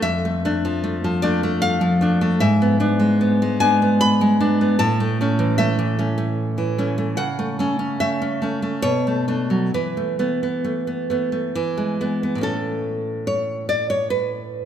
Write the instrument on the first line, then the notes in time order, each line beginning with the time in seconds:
nylon-string guitar
0.02 F2 E5
0.25 A3
0.45 A3 D4
0.65 F3
0.84 A3
1.04 F3
1.22 A3 D4 D5
1.43 A3
1.62 F5
1.81 F3
2.01 A3 D4
2.21 A3
2.40 G#2 E5
2.62 B3
2.80 B3 D4
3.00 G#3
3.21 B3
3.42 G#3
3.60 B3 D4 G#5
3.82 B3
4.01 B5
4.21 G#3
4.40 B3 D4
4.61 B3
4.79 A2 A5
5.00 A3
5.21 A3 C#4
5.39 E3
5.58 A3 E5
5.79 E3
5.99 A3 C#4
6.18 A3
6.58 E3
6.78 A3 C#4
6.98 A3
7.17 C#3 F#5
7.39 A3
7.59 A3 C#4
7.79 C#4
8.00 A3 E5
8.22 C#4
8.42 A3 C#4
8.62 A3
8.82 B2 C#5
9.07 A3
9.28 A3 D4
9.50 F#3
9.74 E3 B4
9.97 A3
10.19 A3 B3
10.43 B3
10.64 A3
10.87 B3
11.10 A3 B3
11.32 A3
11.55 E3
11.77 G#3
12.01 G#3 B3
12.23 B3
12.35 A2 A3
12.41 C#4 A4
13.27 C#5
13.69 D5
13.90 C#5
14.10 B4